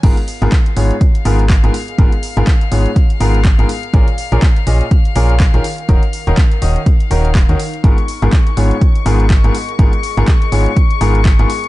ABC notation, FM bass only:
X:1
M:4/4
L:1/16
Q:"Swing 16ths" 1/4=123
K:G#dor
V:1 name="FM bass" clef=bass
G,,, z2 G,,, z2 G,,, z3 G,,,3 G,,, z2 | G,,, z2 G,,, z2 G,,, z3 G,,,3 G,,, z2 | A,,, z2 A,,, z2 A,,, z3 A,,,3 A,,, z2 | D,,, z2 D,,, z2 D,,, z3 D,,,3 D,, z2 |
G,,, z2 G,,, z2 G,,, z3 G,,,3 G,,, z2 | G,,, z2 G,,, z2 G,,, z3 G,,,3 G,,, z2 |]